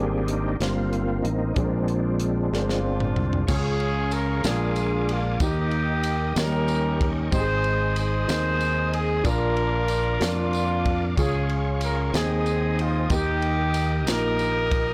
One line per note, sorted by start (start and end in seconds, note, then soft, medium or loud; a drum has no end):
0.00 0.56 G#1 medium
0.00 0.56 G#2 medium
0.00 0.53 G3 medium
0.00 0.56 A#3 soft
0.00 0.53 C4 medium
0.00 0.57 C4 medium
0.00 0.53 D4 medium
0.00 0.57 D4 medium
0.00 0.56 G4 soft
0.00 0.30 G#4 medium
0.00 0.57 A#4 medium
0.26 0.57 D#4 medium
0.26 closed hi-hat medium
0.60 1.20 G1 medium
0.60 1.49 G3 medium
0.60 1.53 A#3 medium
0.60 1.49 C4 medium
0.60 1.53 C4 medium
0.60 1.49 D4 soft
0.60 1.26 F4 medium
0.60 1.49 A#4 medium
0.60 snare medium
0.60 closed hi-hat medium
0.93 closed hi-hat soft
1.22 1.54 A1 medium
1.22 1.56 D#4 medium
1.22 closed hi-hat medium
1.55 2.48 A#1 medium
1.55 2.48 A#2 soft
1.55 2.81 F3 soft
1.55 2.45 G#3 medium
1.55 2.81 G#3 soft
1.55 2.45 C4 medium
1.55 3.45 C4 soft
1.55 3.45 D4 medium
1.55 2.45 D4 medium
1.55 1.63 G#4 medium
1.55 kick medium
1.55 closed hi-hat medium
1.64 2.49 A#4 medium
1.88 closed hi-hat soft
2.20 closed hi-hat medium
2.53 3.12 G1 medium
2.53 3.41 G#3 medium
2.53 3.45 G#3 medium
2.53 3.41 C4 medium
2.53 3.41 D4 medium
2.53 3.45 D4 soft
2.53 3.45 F4 medium
2.53 2.60 A#4 medium
2.53 snare soft
2.60 3.45 C5 medium
2.69 snare soft
3.00 mid tom medium
3.16 3.46 C2 medium
3.16 floor tom medium
3.33 floor tom medium
3.47 4.41 C#2 loud
3.47 4.40 C#3 medium
3.47 4.37 C#4 medium
3.47 4.42 C#4 medium
3.47 4.37 F4 medium
3.47 4.41 F4 medium
3.47 4.43 G#4 medium
3.47 4.37 G#4 medium
3.47 4.14 G#4 medium
3.47 4.43 C#5 medium
3.47 5.38 F5 medium
3.47 4.43 C#6 medium
3.47 kick loud
3.47 crash loud
3.47 tambourine medium
3.80 ride soft
4.11 4.45 A#4 medium
4.11 ride medium
4.11 tambourine soft
4.43 5.36 A#1 loud
4.43 5.36 A#2 medium
4.43 5.32 G#3 medium
4.43 5.33 A#3 medium
4.43 5.33 D4 medium
4.43 5.37 D4 medium
4.43 5.33 F4 medium
4.43 5.10 F4 medium
4.43 5.09 G#4 medium
4.43 6.34 A#4 medium
4.43 5.33 A#4 medium
4.43 5.39 G#5 medium
4.43 5.39 D6 medium
4.43 snare loud
4.43 ride medium
4.43 tambourine medium
4.76 ride soft
4.76 tambourine soft
5.09 5.42 F4 medium
5.09 ride medium
5.40 6.32 D#2 loud
5.40 6.33 D#3 medium
5.40 6.29 A#3 medium
5.40 6.33 A#3 medium
5.40 6.33 D#4 medium
5.40 6.30 D#4 medium
5.40 6.37 G4 medium
5.40 6.30 G4 medium
5.40 9.22 D#5 medium
5.40 6.36 G5 medium
5.40 6.36 D#6 medium
5.40 kick loud
5.40 ride medium
5.40 tambourine medium
5.71 ride soft
6.03 ride medium
6.03 tambourine medium
6.35 7.28 D#2 loud
6.35 7.28 D#3 medium
6.35 6.42 F#3 medium
6.35 7.25 A#3 medium
6.35 7.25 C#4 medium
6.35 7.30 C#4 medium
6.35 7.25 D#4 medium
6.35 7.30 G4 medium
6.35 7.25 A#4 medium
6.35 7.32 A#4 medium
6.35 7.07 A#4 medium
6.35 7.32 G5 medium
6.35 7.32 C#6 medium
6.35 snare loud
6.35 ride medium
6.35 tambourine medium
6.41 7.28 G3 medium
6.68 ride soft
6.68 tambourine soft
7.01 kick medium
7.01 ride medium
7.31 8.25 G#1 loud
7.31 8.24 G#2 medium
7.31 8.21 C4 medium
7.31 8.21 D#4 medium
7.31 7.98 D#4 medium
7.31 7.39 G4 medium
7.31 7.98 G#4 medium
7.31 7.93 C5 loud
7.31 9.24 C5 medium
7.31 9.24 G#5 medium
7.31 9.24 D#6 medium
7.31 kick loud
7.31 ride medium
7.31 tambourine medium
7.39 8.25 G#4 medium
7.64 ride soft
7.96 8.90 D#4 medium
7.96 8.90 G#4 medium
7.96 8.90 C5 loud
7.96 ride medium
7.96 tambourine medium
8.28 9.21 D#2 medium
8.28 9.17 C4 medium
8.28 9.17 D#4 medium
8.28 9.18 A#4 medium
8.28 snare loud
8.28 ride medium
8.28 tambourine loud
8.61 ride soft
8.61 tambourine soft
8.93 9.25 G#4 medium
8.93 ride medium
9.24 10.17 A#1 medium
9.24 10.17 A#2 medium
9.24 10.13 D4 medium
9.24 10.18 D4 medium
9.24 10.14 F4 medium
9.24 10.18 F4 medium
9.24 10.14 A#4 medium
9.24 10.21 A#4 loud
9.24 11.16 A#4 medium
9.24 11.16 D5 medium
9.24 12.11 F5 medium
9.24 11.16 D6 medium
9.24 kick loud
9.24 ride medium
9.24 tambourine medium
9.57 ride soft
9.88 ride medium
9.88 tambourine medium
10.20 11.13 F2 medium
10.20 11.03 A#3 medium
10.20 11.09 D4 medium
10.20 11.10 F4 medium
10.20 11.03 F4 medium
10.20 11.10 A#4 medium
10.20 snare loud
10.20 ride medium
10.20 tambourine medium
10.24 11.03 D4 medium
10.53 ride soft
10.53 tambourine medium
10.86 kick medium
10.86 ride medium
11.16 12.10 C#2 medium
11.16 12.10 C#3 medium
11.16 12.06 C#4 medium
11.16 12.06 F4 medium
11.16 12.07 G#4 medium
11.16 12.13 G#4 medium
11.16 11.54 G#4 medium
11.16 12.13 C#5 medium
11.16 12.13 C#6 medium
11.16 kick loud
11.16 ride medium
11.16 tambourine medium
11.21 12.12 C#4 medium
11.21 12.11 F4 medium
11.49 ride soft
11.81 12.13 A#4 medium
11.81 ride medium
11.81 tambourine medium
12.13 13.06 D#2 medium
12.13 13.06 D#3 medium
12.13 13.02 C4 medium
12.13 13.08 C4 medium
12.13 13.03 D#4 medium
12.13 13.08 D#4 medium
12.13 13.03 G#4 medium
12.13 12.79 G#4 loud
12.13 13.09 C5 medium
12.13 14.94 D#5 medium
12.13 13.09 G#5 medium
12.13 14.94 D#6 medium
12.13 snare loud
12.13 ride medium
12.13 tambourine medium
12.46 ride soft
12.46 tambourine soft
12.79 13.11 F4 medium
12.79 ride medium
13.10 14.07 D#2 loud
13.10 14.03 D#3 medium
13.10 13.99 A#3 medium
13.10 13.99 D#4 medium
13.10 14.04 D#4 medium
13.10 14.00 G4 medium
13.10 14.08 G4 loud
13.10 14.94 A#4 medium
13.10 14.94 G5 medium
13.10 kick loud
13.10 ride medium
13.10 tambourine medium
13.14 14.04 A#3 medium
13.42 ride soft
13.74 ride medium
13.74 tambourine medium
14.07 14.94 A#1 medium
14.07 14.94 A#3 medium
14.07 14.94 D#4 medium
14.07 14.94 F4 medium
14.07 14.94 G4 medium
14.07 14.94 A#4 loud
14.07 snare loud
14.07 ride medium
14.07 tambourine medium
14.39 ride soft
14.39 tambourine soft
14.71 kick medium
14.71 ride medium